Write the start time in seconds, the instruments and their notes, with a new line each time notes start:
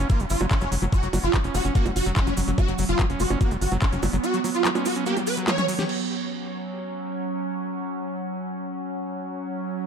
Already playing: ambient pad F#3 C#4
0.10 acid bass A#3, digital synth lead F4, kick, closed hi-hat, high bongo, cabasa
0.20 analog synth bass F#1, acid bass F#3, closed hi-hat, cabasa
0.30 analog synth bass G1, digital synth lead F4, open hi-hat, cabasa
0.41 analog synth bass F#1, acid bass F#3, closed hi-hat, high bongo, cabasa
0.51 digital synth lead C#4, kick, clap, closed hi-hat, cabasa
0.61 analog synth bass F#1, acid bass F#3, closed hi-hat, cabasa
0.72 analog synth bass F#1, acid bass F#3, open hi-hat, cabasa
0.82 analog synth bass F#1, acid bass F#3, closed hi-hat, high bongo, cabasa
0.93 digital synth lead F#4, kick, closed hi-hat, cabasa
1.03 analog synth bass F#1, acid bass F#3, closed hi-hat, cabasa
1.13 analog synth bass F#1, acid bass F#3, open hi-hat, high bongo, cabasa
1.24 analog synth bass F#1, digital synth lead F4, closed hi-hat, cabasa
1.34 acid bass F#3, kick, clap, closed hi-hat, cabasa
1.44 analog synth bass F#1, acid bass C#4, closed hi-hat
1.55 analog synth bass F#1, acid bass F#3, digital synth lead F#4, open hi-hat, high bongo, cabasa
1.65 analog synth bass F#1, acid bass C#4, closed hi-hat, cabasa
1.75 acid bass A#3, digital synth lead F#4, kick, closed hi-hat, cabasa
1.86 analog synth bass F#1, acid bass F#3, closed hi-hat, high bongo, cabasa
1.96 analog synth bass F#1, digital synth lead F#4, open hi-hat, cabasa
2.06 analog synth bass F#1, acid bass F#3, closed hi-hat, cabasa
2.16 digital synth lead C#4, kick, clap, closed hi-hat, cabasa
2.27 analog synth bass F#1, acid bass F#3, closed hi-hat, high bongo, cabasa
2.37 analog synth bass F#1, acid bass F#3, open hi-hat, cabasa
2.48 analog synth bass F#1, acid bass F#3, closed hi-hat, cabasa
2.58 ambient pad B3, digital synth lead F#4, kick, closed hi-hat, high bongo, cabasa
2.68 analog synth bass F#1, acid bass F#3, closed hi-hat, cabasa
2.78 analog synth bass F#1, acid bass F#3, open hi-hat, cabasa
2.89 analog synth bass F#1, digital synth lead F4, closed hi-hat, cabasa
2.99 acid bass F#3, kick, clap, closed hi-hat, high bongo, cabasa
3.10 analog synth bass F#1, acid bass C#4, closed hi-hat
3.20 analog synth bass F#1, acid bass F#3, digital synth lead F#4, open hi-hat, cabasa
3.30 analog synth bass F#1, acid bass C#4, closed hi-hat, high bongo, cabasa
3.41 acid bass A#3, digital synth lead F#4, kick, closed hi-hat, cabasa
3.51 analog synth bass F#1, acid bass F#3, closed hi-hat, cabasa
3.61 analog synth bass G1, digital synth lead F#4, open hi-hat, cabasa
3.72 analog synth bass F#1, acid bass F#3, closed hi-hat, high bongo, cabasa
3.81 digital synth lead C#4, kick, clap, closed hi-hat, cabasa
3.92 analog synth bass F#1, acid bass F#3, closed hi-hat, cabasa
4.03 analog synth bass F#1, acid bass F#3, open hi-hat, high bongo, cabasa
4.13 analog synth bass F#1, acid bass F#3, closed hi-hat, cabasa
4.24 digital synth lead F#4, closed hi-hat, cabasa
4.33 acid bass F#3, closed hi-hat, cabasa
4.44 acid bass F#3, open hi-hat, high bongo, cabasa
4.55 digital synth lead F4, closed hi-hat, cabasa
4.65 acid bass F#3, clap, closed hi-hat, cabasa
4.75 acid bass C#4, closed hi-hat, high bongo, cabasa
4.85 acid bass F#3, digital synth lead F#4, open hi-hat, cabasa
4.95 acid bass C#4, closed hi-hat, cabasa
5.06 acid bass A#3, digital synth lead G4, closed hi-hat, cabasa
5.16 acid bass F#3, closed hi-hat, high bongo, cabasa
5.27 digital synth lead B4, open hi-hat, cabasa
5.37 acid bass F#3, closed hi-hat, cabasa
5.48 digital synth lead C#5, clap, closed hi-hat, high tom, high bongo, cabasa
5.58 acid bass C#4, closed hi-hat, high tom, cabasa
5.68 acid bass F#3, open hi-hat, cabasa
5.79 acid bass G4, snare, closed hi-hat, cabasa
5.89 ambient pad F#3 C#4, crash